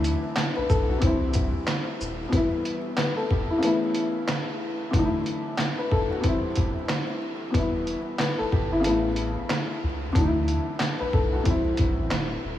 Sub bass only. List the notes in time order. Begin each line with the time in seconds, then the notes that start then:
Already playing: D2
0.57 B1
0.70 B1
1.02 C2
2.01 D#1
7.55 E1
8.40 G1
8.53 G1
8.85 A1
9.83 C#2
10.15 D2
11.01 B1
11.14 B1
11.46 C2
11.79 B1
11.98 A1
12.12 D1
12.44 D#1